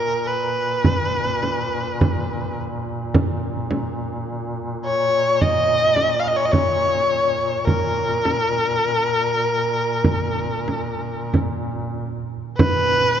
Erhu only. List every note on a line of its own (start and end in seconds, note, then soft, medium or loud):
0.00 0.28 A#4 medium
0.27 2.59 B4 medium
4.85 5.43 C#5 medium
5.41 6.21 D#5 medium
6.20 6.29 F5 medium
6.28 6.37 D#5 medium
6.36 6.47 C#5 medium
6.45 6.53 D#5 medium
6.51 7.66 C#5 medium
7.64 11.31 A#4 medium
12.57 13.20 B4 loud